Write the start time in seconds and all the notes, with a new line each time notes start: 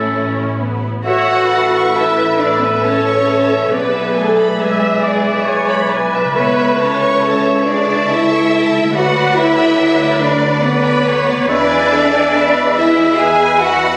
Already playing: A1 A2 A3 C#4 E4 A4
0.12 C#4
0.60 B3
1.05 A1 E3 F#4 A4 C#5 E5 F#5
1.30 E5
1.52 B4 A5
1.74 C#6
1.95 E4 E5 A5
2.18 E5
2.38 D4 C#5 D5
2.60 B3 B4 E5
2.82 C#4 A4 C#5 A5
3.05 C#6
3.27 A5
3.50 E5
3.70 B1 B3 G#4 B4 D5
3.94 E5
4.16 A3 A4 G#5
4.37 B5
4.58 G#3 G#4 E5 G#5
4.80 E5
5.03 D5
5.25 E5
5.46 C#5 G#5
5.68 B5
5.91 B4 G#5
6.13 E5
6.35 C#2 E3 B3 A4 B4 C#5 E5
6.57 E5
6.79 C#4 C#5 A5
7.01 C#6
7.22 A4 A5
7.43 E5
7.64 D4 G#4 C#5 D5
7.85 E5
8.08 E4 A4 E5 A5
8.29 C#6
8.51 A5
8.73 E5
8.93 D2 F#3 F#4 B4 D5 F#5
9.15 D5
9.35 E4 E5 F#5
9.58 B5
9.79 B4 F#5
10.00 D5
10.19 D4 B4 D5
10.43 D5
10.63 B3 B4 D5 F#5
10.86 B5
11.07 C#5 F#5
11.27 D5
11.48 E2 G#3 D4 B4 D5 E5 G#5
11.71 D5
11.92 A4 E5
12.13 G#5
12.34 B4 E5
12.55 D5
12.76 E4 G#4 B4 E5
12.97 D5
13.17 G#4 B4 E5 G#5
13.39 G#5
13.59 F#4 E5 F#5
13.81 D5